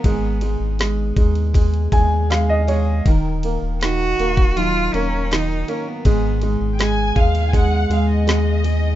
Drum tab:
RD |x-x-x-xxxxx-x-x-|x-x-x-xxx-x-x-x-|x-x-x-xxx-x-x-x-|
SD |----o-------o---|----o-------o---|----o-------o---|
BD |o-----o-o-o-----|o------o--------|o-----o-o-------|